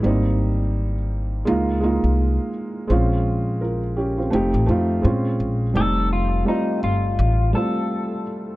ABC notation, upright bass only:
X:1
M:4/4
L:1/16
Q:"Swing 16ths" 1/4=84
K:Fm
V:1 name="Upright bass" clef=bass
A,,,8 D,,3 C,,2 z3 | B,,,8 F,,, =A,,, F,,2 B,,2 B,,,2 | F,,,4 z2 G,,,2 =A,,,2 z6 |]